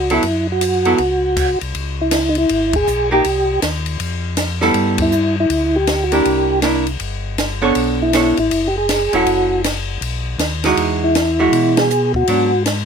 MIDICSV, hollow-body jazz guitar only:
0, 0, Header, 1, 2, 480
1, 0, Start_track
1, 0, Key_signature, 3, "minor"
1, 0, Tempo, 376176
1, 305, Time_signature, 4, 2, 24, 8
1, 16397, End_track
2, 0, Start_track
2, 0, Title_t, "Hollow-body jazz guitar"
2, 0, Program_c, 0, 26
2, 132, Note_on_c, 0, 54, 51
2, 139, Note_on_c, 0, 59, 57
2, 142, Note_on_c, 0, 69, 65
2, 145, Note_on_c, 0, 64, 62
2, 287, Note_off_c, 0, 54, 0
2, 291, Note_off_c, 0, 59, 0
2, 292, Note_off_c, 0, 69, 0
2, 294, Note_off_c, 0, 64, 0
2, 1089, Note_on_c, 0, 54, 54
2, 1093, Note_on_c, 0, 59, 61
2, 1100, Note_on_c, 0, 64, 60
2, 1102, Note_on_c, 0, 69, 63
2, 1246, Note_off_c, 0, 54, 0
2, 1248, Note_off_c, 0, 59, 0
2, 1251, Note_off_c, 0, 64, 0
2, 1252, Note_off_c, 0, 69, 0
2, 3971, Note_on_c, 0, 58, 62
2, 3980, Note_on_c, 0, 63, 72
2, 3984, Note_on_c, 0, 67, 74
2, 4125, Note_off_c, 0, 58, 0
2, 4130, Note_off_c, 0, 63, 0
2, 4132, Note_off_c, 0, 67, 0
2, 5887, Note_on_c, 0, 55, 73
2, 5894, Note_on_c, 0, 59, 73
2, 5897, Note_on_c, 0, 64, 72
2, 5900, Note_on_c, 0, 69, 76
2, 6506, Note_off_c, 0, 55, 0
2, 6510, Note_off_c, 0, 59, 0
2, 6511, Note_off_c, 0, 64, 0
2, 6513, Note_off_c, 0, 69, 0
2, 7809, Note_on_c, 0, 58, 58
2, 7820, Note_on_c, 0, 62, 66
2, 7825, Note_on_c, 0, 64, 66
2, 8428, Note_off_c, 0, 58, 0
2, 8433, Note_off_c, 0, 62, 0
2, 8436, Note_off_c, 0, 64, 0
2, 8452, Note_on_c, 0, 58, 61
2, 8465, Note_on_c, 0, 62, 57
2, 8470, Note_on_c, 0, 64, 62
2, 8733, Note_off_c, 0, 58, 0
2, 8740, Note_off_c, 0, 62, 0
2, 8742, Note_off_c, 0, 64, 0
2, 9719, Note_on_c, 0, 59, 67
2, 9726, Note_on_c, 0, 62, 69
2, 9727, Note_on_c, 0, 69, 72
2, 9738, Note_on_c, 0, 73, 69
2, 10344, Note_off_c, 0, 59, 0
2, 10347, Note_off_c, 0, 62, 0
2, 10348, Note_off_c, 0, 69, 0
2, 10353, Note_off_c, 0, 73, 0
2, 10382, Note_on_c, 0, 59, 49
2, 10393, Note_on_c, 0, 62, 53
2, 10398, Note_on_c, 0, 69, 55
2, 10404, Note_on_c, 0, 73, 52
2, 10659, Note_off_c, 0, 59, 0
2, 10665, Note_off_c, 0, 62, 0
2, 10668, Note_off_c, 0, 69, 0
2, 10671, Note_off_c, 0, 73, 0
2, 11653, Note_on_c, 0, 54, 62
2, 11661, Note_on_c, 0, 61, 62
2, 11661, Note_on_c, 0, 64, 63
2, 11672, Note_on_c, 0, 69, 64
2, 12271, Note_off_c, 0, 54, 0
2, 12276, Note_off_c, 0, 61, 0
2, 12276, Note_off_c, 0, 64, 0
2, 12281, Note_off_c, 0, 69, 0
2, 13585, Note_on_c, 0, 52, 61
2, 13585, Note_on_c, 0, 56, 64
2, 13597, Note_on_c, 0, 63, 70
2, 13597, Note_on_c, 0, 66, 63
2, 14198, Note_off_c, 0, 56, 0
2, 14199, Note_off_c, 0, 52, 0
2, 14204, Note_off_c, 0, 63, 0
2, 14205, Note_off_c, 0, 66, 0
2, 14537, Note_on_c, 0, 52, 69
2, 14545, Note_on_c, 0, 56, 70
2, 14550, Note_on_c, 0, 66, 71
2, 15155, Note_off_c, 0, 52, 0
2, 15159, Note_off_c, 0, 56, 0
2, 15161, Note_off_c, 0, 66, 0
2, 15671, Note_on_c, 0, 54, 50
2, 15683, Note_on_c, 0, 59, 54
2, 15684, Note_on_c, 0, 62, 61
2, 15946, Note_off_c, 0, 54, 0
2, 15952, Note_off_c, 0, 59, 0
2, 15953, Note_off_c, 0, 62, 0
2, 16397, End_track
0, 0, End_of_file